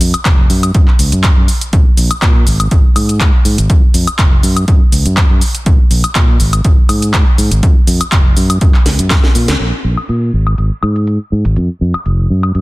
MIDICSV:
0, 0, Header, 1, 4, 480
1, 0, Start_track
1, 0, Tempo, 491803
1, 1688, Time_signature, 4, 2, 24, 8
1, 12308, End_track
2, 0, Start_track
2, 0, Title_t, "Fingered electric bass"
2, 0, Program_c, 0, 33
2, 5, Note_on_c, 0, 41, 93
2, 113, Note_off_c, 0, 41, 0
2, 248, Note_on_c, 0, 29, 84
2, 449, Note_off_c, 0, 29, 0
2, 486, Note_on_c, 0, 42, 98
2, 688, Note_off_c, 0, 42, 0
2, 729, Note_on_c, 0, 42, 92
2, 834, Note_off_c, 0, 42, 0
2, 967, Note_on_c, 0, 37, 83
2, 1074, Note_off_c, 0, 37, 0
2, 1095, Note_on_c, 0, 42, 92
2, 1291, Note_off_c, 0, 42, 0
2, 1336, Note_on_c, 0, 42, 83
2, 1428, Note_off_c, 0, 42, 0
2, 1689, Note_on_c, 0, 34, 89
2, 1795, Note_off_c, 0, 34, 0
2, 1926, Note_on_c, 0, 34, 96
2, 2033, Note_off_c, 0, 34, 0
2, 2169, Note_on_c, 0, 46, 84
2, 2369, Note_off_c, 0, 46, 0
2, 2406, Note_on_c, 0, 32, 99
2, 2608, Note_off_c, 0, 32, 0
2, 2886, Note_on_c, 0, 44, 95
2, 3220, Note_off_c, 0, 44, 0
2, 3367, Note_on_c, 0, 44, 90
2, 3474, Note_off_c, 0, 44, 0
2, 3496, Note_on_c, 0, 32, 92
2, 3588, Note_off_c, 0, 32, 0
2, 3608, Note_on_c, 0, 41, 92
2, 3714, Note_off_c, 0, 41, 0
2, 3847, Note_on_c, 0, 41, 98
2, 3954, Note_off_c, 0, 41, 0
2, 4087, Note_on_c, 0, 29, 84
2, 4289, Note_off_c, 0, 29, 0
2, 4325, Note_on_c, 0, 42, 99
2, 4528, Note_off_c, 0, 42, 0
2, 4567, Note_on_c, 0, 42, 97
2, 4674, Note_off_c, 0, 42, 0
2, 4805, Note_on_c, 0, 37, 87
2, 4912, Note_off_c, 0, 37, 0
2, 4934, Note_on_c, 0, 42, 95
2, 5130, Note_off_c, 0, 42, 0
2, 5174, Note_on_c, 0, 42, 85
2, 5267, Note_off_c, 0, 42, 0
2, 5527, Note_on_c, 0, 34, 93
2, 5634, Note_off_c, 0, 34, 0
2, 5765, Note_on_c, 0, 34, 98
2, 5872, Note_off_c, 0, 34, 0
2, 6007, Note_on_c, 0, 46, 89
2, 6209, Note_off_c, 0, 46, 0
2, 6246, Note_on_c, 0, 32, 104
2, 6448, Note_off_c, 0, 32, 0
2, 6487, Note_on_c, 0, 32, 78
2, 6594, Note_off_c, 0, 32, 0
2, 6725, Note_on_c, 0, 44, 98
2, 7059, Note_off_c, 0, 44, 0
2, 7204, Note_on_c, 0, 44, 94
2, 7312, Note_off_c, 0, 44, 0
2, 7332, Note_on_c, 0, 32, 96
2, 7426, Note_off_c, 0, 32, 0
2, 7447, Note_on_c, 0, 41, 93
2, 7554, Note_off_c, 0, 41, 0
2, 7684, Note_on_c, 0, 41, 99
2, 7792, Note_off_c, 0, 41, 0
2, 7927, Note_on_c, 0, 29, 87
2, 8129, Note_off_c, 0, 29, 0
2, 8166, Note_on_c, 0, 42, 102
2, 8368, Note_off_c, 0, 42, 0
2, 8645, Note_on_c, 0, 37, 87
2, 8753, Note_off_c, 0, 37, 0
2, 8773, Note_on_c, 0, 42, 94
2, 8970, Note_off_c, 0, 42, 0
2, 9126, Note_on_c, 0, 46, 98
2, 9233, Note_off_c, 0, 46, 0
2, 9256, Note_on_c, 0, 37, 102
2, 9348, Note_off_c, 0, 37, 0
2, 9368, Note_on_c, 0, 34, 82
2, 9474, Note_off_c, 0, 34, 0
2, 9606, Note_on_c, 0, 34, 86
2, 9713, Note_off_c, 0, 34, 0
2, 9847, Note_on_c, 0, 46, 76
2, 10049, Note_off_c, 0, 46, 0
2, 10086, Note_on_c, 0, 32, 91
2, 10288, Note_off_c, 0, 32, 0
2, 10326, Note_on_c, 0, 32, 70
2, 10433, Note_off_c, 0, 32, 0
2, 10567, Note_on_c, 0, 44, 85
2, 10900, Note_off_c, 0, 44, 0
2, 11048, Note_on_c, 0, 44, 82
2, 11154, Note_off_c, 0, 44, 0
2, 11176, Note_on_c, 0, 32, 84
2, 11268, Note_off_c, 0, 32, 0
2, 11288, Note_on_c, 0, 41, 83
2, 11394, Note_off_c, 0, 41, 0
2, 11527, Note_on_c, 0, 41, 85
2, 11633, Note_off_c, 0, 41, 0
2, 11767, Note_on_c, 0, 29, 79
2, 11969, Note_off_c, 0, 29, 0
2, 12007, Note_on_c, 0, 42, 90
2, 12208, Note_off_c, 0, 42, 0
2, 12248, Note_on_c, 0, 42, 84
2, 12308, Note_off_c, 0, 42, 0
2, 12308, End_track
3, 0, Start_track
3, 0, Title_t, "Muted fingered electric bass strokes"
3, 135, Note_on_c, 9, 29, 42
3, 233, Note_off_c, 9, 29, 0
3, 2056, Note_on_c, 9, 29, 41
3, 2154, Note_off_c, 9, 29, 0
3, 3977, Note_on_c, 9, 29, 43
3, 4074, Note_off_c, 9, 29, 0
3, 5894, Note_on_c, 9, 29, 44
3, 5992, Note_off_c, 9, 29, 0
3, 7815, Note_on_c, 9, 29, 43
3, 7912, Note_off_c, 9, 29, 0
3, 9736, Note_on_c, 9, 29, 37
3, 9833, Note_off_c, 9, 29, 0
3, 11656, Note_on_c, 9, 29, 37
3, 11754, Note_off_c, 9, 29, 0
3, 12308, End_track
4, 0, Start_track
4, 0, Title_t, "Drums"
4, 7, Note_on_c, 9, 46, 104
4, 10, Note_on_c, 9, 82, 76
4, 104, Note_off_c, 9, 46, 0
4, 107, Note_off_c, 9, 82, 0
4, 136, Note_on_c, 9, 42, 61
4, 136, Note_on_c, 9, 76, 65
4, 139, Note_on_c, 9, 82, 44
4, 234, Note_off_c, 9, 42, 0
4, 234, Note_off_c, 9, 76, 0
4, 236, Note_off_c, 9, 82, 0
4, 247, Note_on_c, 9, 39, 113
4, 247, Note_on_c, 9, 42, 50
4, 248, Note_on_c, 9, 36, 108
4, 250, Note_on_c, 9, 82, 32
4, 344, Note_off_c, 9, 39, 0
4, 344, Note_off_c, 9, 42, 0
4, 346, Note_off_c, 9, 36, 0
4, 347, Note_off_c, 9, 82, 0
4, 487, Note_on_c, 9, 46, 106
4, 490, Note_on_c, 9, 82, 73
4, 585, Note_off_c, 9, 46, 0
4, 587, Note_off_c, 9, 82, 0
4, 616, Note_on_c, 9, 42, 60
4, 616, Note_on_c, 9, 76, 67
4, 619, Note_on_c, 9, 82, 43
4, 714, Note_off_c, 9, 42, 0
4, 714, Note_off_c, 9, 76, 0
4, 717, Note_off_c, 9, 82, 0
4, 727, Note_on_c, 9, 42, 49
4, 728, Note_on_c, 9, 36, 122
4, 730, Note_on_c, 9, 82, 31
4, 825, Note_off_c, 9, 42, 0
4, 826, Note_off_c, 9, 36, 0
4, 828, Note_off_c, 9, 82, 0
4, 856, Note_on_c, 9, 39, 35
4, 953, Note_off_c, 9, 39, 0
4, 967, Note_on_c, 9, 46, 110
4, 970, Note_on_c, 9, 82, 77
4, 1065, Note_off_c, 9, 46, 0
4, 1068, Note_off_c, 9, 82, 0
4, 1096, Note_on_c, 9, 42, 61
4, 1098, Note_on_c, 9, 82, 43
4, 1193, Note_off_c, 9, 42, 0
4, 1196, Note_off_c, 9, 82, 0
4, 1207, Note_on_c, 9, 39, 114
4, 1207, Note_on_c, 9, 42, 49
4, 1209, Note_on_c, 9, 36, 110
4, 1210, Note_on_c, 9, 82, 32
4, 1305, Note_off_c, 9, 39, 0
4, 1305, Note_off_c, 9, 42, 0
4, 1306, Note_off_c, 9, 36, 0
4, 1308, Note_off_c, 9, 82, 0
4, 1447, Note_on_c, 9, 46, 106
4, 1449, Note_on_c, 9, 82, 74
4, 1544, Note_off_c, 9, 46, 0
4, 1547, Note_off_c, 9, 82, 0
4, 1575, Note_on_c, 9, 42, 60
4, 1578, Note_on_c, 9, 82, 40
4, 1673, Note_off_c, 9, 42, 0
4, 1676, Note_off_c, 9, 82, 0
4, 1687, Note_on_c, 9, 42, 47
4, 1689, Note_on_c, 9, 36, 110
4, 1690, Note_on_c, 9, 82, 32
4, 1785, Note_off_c, 9, 42, 0
4, 1786, Note_off_c, 9, 36, 0
4, 1788, Note_off_c, 9, 82, 0
4, 1927, Note_on_c, 9, 46, 104
4, 1929, Note_on_c, 9, 82, 78
4, 2024, Note_off_c, 9, 46, 0
4, 2027, Note_off_c, 9, 82, 0
4, 2056, Note_on_c, 9, 42, 60
4, 2056, Note_on_c, 9, 76, 69
4, 2059, Note_on_c, 9, 82, 43
4, 2153, Note_off_c, 9, 42, 0
4, 2153, Note_off_c, 9, 76, 0
4, 2156, Note_off_c, 9, 82, 0
4, 2168, Note_on_c, 9, 39, 111
4, 2168, Note_on_c, 9, 42, 49
4, 2169, Note_on_c, 9, 36, 109
4, 2171, Note_on_c, 9, 82, 33
4, 2265, Note_off_c, 9, 39, 0
4, 2266, Note_off_c, 9, 36, 0
4, 2266, Note_off_c, 9, 42, 0
4, 2269, Note_off_c, 9, 82, 0
4, 2408, Note_on_c, 9, 46, 103
4, 2411, Note_on_c, 9, 82, 78
4, 2505, Note_off_c, 9, 46, 0
4, 2508, Note_off_c, 9, 82, 0
4, 2537, Note_on_c, 9, 42, 63
4, 2537, Note_on_c, 9, 76, 68
4, 2540, Note_on_c, 9, 82, 43
4, 2634, Note_off_c, 9, 42, 0
4, 2634, Note_off_c, 9, 76, 0
4, 2637, Note_off_c, 9, 82, 0
4, 2647, Note_on_c, 9, 42, 49
4, 2649, Note_on_c, 9, 36, 114
4, 2650, Note_on_c, 9, 82, 33
4, 2745, Note_off_c, 9, 42, 0
4, 2746, Note_off_c, 9, 36, 0
4, 2748, Note_off_c, 9, 82, 0
4, 2887, Note_on_c, 9, 46, 101
4, 2887, Note_on_c, 9, 76, 80
4, 2891, Note_on_c, 9, 82, 78
4, 2985, Note_off_c, 9, 46, 0
4, 2985, Note_off_c, 9, 76, 0
4, 2988, Note_off_c, 9, 82, 0
4, 3017, Note_on_c, 9, 42, 62
4, 3020, Note_on_c, 9, 82, 45
4, 3115, Note_off_c, 9, 42, 0
4, 3118, Note_off_c, 9, 82, 0
4, 3128, Note_on_c, 9, 36, 104
4, 3128, Note_on_c, 9, 39, 110
4, 3129, Note_on_c, 9, 42, 50
4, 3131, Note_on_c, 9, 82, 33
4, 3226, Note_off_c, 9, 36, 0
4, 3226, Note_off_c, 9, 39, 0
4, 3226, Note_off_c, 9, 42, 0
4, 3229, Note_off_c, 9, 82, 0
4, 3368, Note_on_c, 9, 46, 107
4, 3371, Note_on_c, 9, 82, 77
4, 3466, Note_off_c, 9, 46, 0
4, 3469, Note_off_c, 9, 82, 0
4, 3497, Note_on_c, 9, 42, 61
4, 3499, Note_on_c, 9, 82, 42
4, 3594, Note_off_c, 9, 42, 0
4, 3597, Note_off_c, 9, 82, 0
4, 3608, Note_on_c, 9, 36, 108
4, 3608, Note_on_c, 9, 42, 50
4, 3611, Note_on_c, 9, 82, 34
4, 3705, Note_off_c, 9, 42, 0
4, 3706, Note_off_c, 9, 36, 0
4, 3708, Note_off_c, 9, 82, 0
4, 3847, Note_on_c, 9, 46, 101
4, 3850, Note_on_c, 9, 82, 81
4, 3945, Note_off_c, 9, 46, 0
4, 3948, Note_off_c, 9, 82, 0
4, 3976, Note_on_c, 9, 42, 64
4, 3976, Note_on_c, 9, 76, 70
4, 3979, Note_on_c, 9, 82, 46
4, 4074, Note_off_c, 9, 42, 0
4, 4074, Note_off_c, 9, 76, 0
4, 4077, Note_off_c, 9, 82, 0
4, 4087, Note_on_c, 9, 36, 104
4, 4087, Note_on_c, 9, 39, 111
4, 4087, Note_on_c, 9, 42, 50
4, 4090, Note_on_c, 9, 82, 35
4, 4185, Note_off_c, 9, 36, 0
4, 4185, Note_off_c, 9, 39, 0
4, 4185, Note_off_c, 9, 42, 0
4, 4188, Note_off_c, 9, 82, 0
4, 4327, Note_on_c, 9, 46, 100
4, 4330, Note_on_c, 9, 82, 78
4, 4425, Note_off_c, 9, 46, 0
4, 4428, Note_off_c, 9, 82, 0
4, 4455, Note_on_c, 9, 42, 64
4, 4455, Note_on_c, 9, 76, 67
4, 4458, Note_on_c, 9, 82, 46
4, 4553, Note_off_c, 9, 42, 0
4, 4553, Note_off_c, 9, 76, 0
4, 4556, Note_off_c, 9, 82, 0
4, 4566, Note_on_c, 9, 42, 51
4, 4567, Note_on_c, 9, 36, 109
4, 4569, Note_on_c, 9, 82, 35
4, 4664, Note_off_c, 9, 42, 0
4, 4665, Note_off_c, 9, 36, 0
4, 4667, Note_off_c, 9, 82, 0
4, 4806, Note_on_c, 9, 46, 101
4, 4809, Note_on_c, 9, 82, 81
4, 4903, Note_off_c, 9, 46, 0
4, 4906, Note_off_c, 9, 82, 0
4, 4934, Note_on_c, 9, 42, 65
4, 4937, Note_on_c, 9, 82, 47
4, 5032, Note_off_c, 9, 42, 0
4, 5035, Note_off_c, 9, 82, 0
4, 5046, Note_on_c, 9, 39, 111
4, 5046, Note_on_c, 9, 42, 52
4, 5047, Note_on_c, 9, 36, 99
4, 5049, Note_on_c, 9, 82, 34
4, 5143, Note_off_c, 9, 39, 0
4, 5143, Note_off_c, 9, 42, 0
4, 5144, Note_off_c, 9, 36, 0
4, 5146, Note_off_c, 9, 82, 0
4, 5284, Note_on_c, 9, 46, 101
4, 5287, Note_on_c, 9, 82, 83
4, 5382, Note_off_c, 9, 46, 0
4, 5385, Note_off_c, 9, 82, 0
4, 5413, Note_on_c, 9, 42, 62
4, 5416, Note_on_c, 9, 82, 45
4, 5510, Note_off_c, 9, 42, 0
4, 5513, Note_off_c, 9, 82, 0
4, 5526, Note_on_c, 9, 42, 51
4, 5527, Note_on_c, 9, 36, 107
4, 5528, Note_on_c, 9, 82, 34
4, 5623, Note_off_c, 9, 42, 0
4, 5625, Note_off_c, 9, 36, 0
4, 5626, Note_off_c, 9, 82, 0
4, 5766, Note_on_c, 9, 46, 100
4, 5769, Note_on_c, 9, 82, 80
4, 5863, Note_off_c, 9, 46, 0
4, 5866, Note_off_c, 9, 82, 0
4, 5895, Note_on_c, 9, 42, 65
4, 5895, Note_on_c, 9, 76, 67
4, 5897, Note_on_c, 9, 82, 46
4, 5992, Note_off_c, 9, 42, 0
4, 5992, Note_off_c, 9, 76, 0
4, 5995, Note_off_c, 9, 82, 0
4, 6005, Note_on_c, 9, 39, 115
4, 6005, Note_on_c, 9, 42, 53
4, 6007, Note_on_c, 9, 36, 99
4, 6008, Note_on_c, 9, 82, 35
4, 6102, Note_off_c, 9, 39, 0
4, 6102, Note_off_c, 9, 42, 0
4, 6105, Note_off_c, 9, 36, 0
4, 6105, Note_off_c, 9, 82, 0
4, 6245, Note_on_c, 9, 46, 99
4, 6248, Note_on_c, 9, 82, 80
4, 6342, Note_off_c, 9, 46, 0
4, 6345, Note_off_c, 9, 82, 0
4, 6373, Note_on_c, 9, 42, 66
4, 6373, Note_on_c, 9, 76, 66
4, 6376, Note_on_c, 9, 82, 47
4, 6471, Note_off_c, 9, 42, 0
4, 6471, Note_off_c, 9, 76, 0
4, 6474, Note_off_c, 9, 82, 0
4, 6485, Note_on_c, 9, 42, 55
4, 6487, Note_on_c, 9, 36, 113
4, 6488, Note_on_c, 9, 82, 34
4, 6583, Note_off_c, 9, 42, 0
4, 6585, Note_off_c, 9, 36, 0
4, 6586, Note_off_c, 9, 82, 0
4, 6725, Note_on_c, 9, 46, 100
4, 6725, Note_on_c, 9, 76, 79
4, 6728, Note_on_c, 9, 82, 85
4, 6823, Note_off_c, 9, 46, 0
4, 6823, Note_off_c, 9, 76, 0
4, 6826, Note_off_c, 9, 82, 0
4, 6855, Note_on_c, 9, 42, 69
4, 6858, Note_on_c, 9, 82, 47
4, 6953, Note_off_c, 9, 42, 0
4, 6956, Note_off_c, 9, 82, 0
4, 6966, Note_on_c, 9, 39, 118
4, 6966, Note_on_c, 9, 42, 53
4, 6967, Note_on_c, 9, 36, 101
4, 6969, Note_on_c, 9, 82, 35
4, 7064, Note_off_c, 9, 39, 0
4, 7064, Note_off_c, 9, 42, 0
4, 7065, Note_off_c, 9, 36, 0
4, 7067, Note_off_c, 9, 82, 0
4, 7206, Note_on_c, 9, 46, 99
4, 7209, Note_on_c, 9, 82, 84
4, 7304, Note_off_c, 9, 46, 0
4, 7307, Note_off_c, 9, 82, 0
4, 7334, Note_on_c, 9, 42, 66
4, 7337, Note_on_c, 9, 82, 45
4, 7432, Note_off_c, 9, 42, 0
4, 7435, Note_off_c, 9, 82, 0
4, 7446, Note_on_c, 9, 42, 53
4, 7447, Note_on_c, 9, 36, 110
4, 7449, Note_on_c, 9, 82, 35
4, 7544, Note_off_c, 9, 36, 0
4, 7544, Note_off_c, 9, 42, 0
4, 7546, Note_off_c, 9, 82, 0
4, 7685, Note_on_c, 9, 46, 101
4, 7688, Note_on_c, 9, 82, 81
4, 7782, Note_off_c, 9, 46, 0
4, 7785, Note_off_c, 9, 82, 0
4, 7815, Note_on_c, 9, 42, 69
4, 7815, Note_on_c, 9, 76, 66
4, 7817, Note_on_c, 9, 82, 45
4, 7912, Note_off_c, 9, 42, 0
4, 7912, Note_off_c, 9, 76, 0
4, 7915, Note_off_c, 9, 82, 0
4, 7925, Note_on_c, 9, 39, 118
4, 7925, Note_on_c, 9, 42, 54
4, 7927, Note_on_c, 9, 36, 102
4, 7928, Note_on_c, 9, 82, 34
4, 8023, Note_off_c, 9, 39, 0
4, 8023, Note_off_c, 9, 42, 0
4, 8025, Note_off_c, 9, 36, 0
4, 8026, Note_off_c, 9, 82, 0
4, 8165, Note_on_c, 9, 46, 100
4, 8168, Note_on_c, 9, 82, 78
4, 8263, Note_off_c, 9, 46, 0
4, 8266, Note_off_c, 9, 82, 0
4, 8294, Note_on_c, 9, 42, 67
4, 8294, Note_on_c, 9, 76, 65
4, 8297, Note_on_c, 9, 82, 46
4, 8392, Note_off_c, 9, 42, 0
4, 8392, Note_off_c, 9, 76, 0
4, 8395, Note_off_c, 9, 82, 0
4, 8405, Note_on_c, 9, 42, 54
4, 8407, Note_on_c, 9, 36, 114
4, 8408, Note_on_c, 9, 82, 34
4, 8503, Note_off_c, 9, 42, 0
4, 8505, Note_off_c, 9, 36, 0
4, 8506, Note_off_c, 9, 82, 0
4, 8534, Note_on_c, 9, 39, 37
4, 8631, Note_off_c, 9, 39, 0
4, 8645, Note_on_c, 9, 38, 60
4, 8645, Note_on_c, 9, 46, 102
4, 8648, Note_on_c, 9, 82, 81
4, 8743, Note_off_c, 9, 38, 0
4, 8743, Note_off_c, 9, 46, 0
4, 8746, Note_off_c, 9, 82, 0
4, 8774, Note_on_c, 9, 42, 69
4, 8777, Note_on_c, 9, 82, 46
4, 8872, Note_off_c, 9, 42, 0
4, 8875, Note_off_c, 9, 82, 0
4, 8885, Note_on_c, 9, 39, 123
4, 8886, Note_on_c, 9, 38, 75
4, 8886, Note_on_c, 9, 42, 56
4, 8888, Note_on_c, 9, 36, 103
4, 8889, Note_on_c, 9, 82, 34
4, 8983, Note_off_c, 9, 38, 0
4, 8983, Note_off_c, 9, 39, 0
4, 8983, Note_off_c, 9, 42, 0
4, 8985, Note_off_c, 9, 36, 0
4, 8986, Note_off_c, 9, 82, 0
4, 9015, Note_on_c, 9, 38, 72
4, 9112, Note_off_c, 9, 38, 0
4, 9126, Note_on_c, 9, 46, 101
4, 9129, Note_on_c, 9, 82, 79
4, 9224, Note_off_c, 9, 46, 0
4, 9227, Note_off_c, 9, 82, 0
4, 9255, Note_on_c, 9, 38, 84
4, 9255, Note_on_c, 9, 42, 66
4, 9258, Note_on_c, 9, 82, 45
4, 9353, Note_off_c, 9, 38, 0
4, 9353, Note_off_c, 9, 42, 0
4, 9356, Note_off_c, 9, 82, 0
4, 9366, Note_on_c, 9, 42, 47
4, 9366, Note_on_c, 9, 49, 73
4, 9464, Note_off_c, 9, 42, 0
4, 9464, Note_off_c, 9, 49, 0
4, 9735, Note_on_c, 9, 42, 61
4, 9735, Note_on_c, 9, 76, 56
4, 9833, Note_off_c, 9, 42, 0
4, 9833, Note_off_c, 9, 76, 0
4, 9846, Note_on_c, 9, 42, 49
4, 9944, Note_off_c, 9, 42, 0
4, 10215, Note_on_c, 9, 42, 61
4, 10215, Note_on_c, 9, 76, 56
4, 10313, Note_off_c, 9, 42, 0
4, 10313, Note_off_c, 9, 76, 0
4, 10326, Note_on_c, 9, 42, 48
4, 10424, Note_off_c, 9, 42, 0
4, 10566, Note_on_c, 9, 76, 67
4, 10663, Note_off_c, 9, 76, 0
4, 10696, Note_on_c, 9, 42, 61
4, 10794, Note_off_c, 9, 42, 0
4, 10807, Note_on_c, 9, 42, 48
4, 10904, Note_off_c, 9, 42, 0
4, 11175, Note_on_c, 9, 42, 59
4, 11273, Note_off_c, 9, 42, 0
4, 11286, Note_on_c, 9, 42, 46
4, 11384, Note_off_c, 9, 42, 0
4, 11655, Note_on_c, 9, 42, 57
4, 11655, Note_on_c, 9, 76, 56
4, 11753, Note_off_c, 9, 42, 0
4, 11753, Note_off_c, 9, 76, 0
4, 11767, Note_on_c, 9, 42, 47
4, 11865, Note_off_c, 9, 42, 0
4, 12135, Note_on_c, 9, 42, 58
4, 12135, Note_on_c, 9, 76, 55
4, 12232, Note_off_c, 9, 42, 0
4, 12232, Note_off_c, 9, 76, 0
4, 12247, Note_on_c, 9, 42, 46
4, 12308, Note_off_c, 9, 42, 0
4, 12308, End_track
0, 0, End_of_file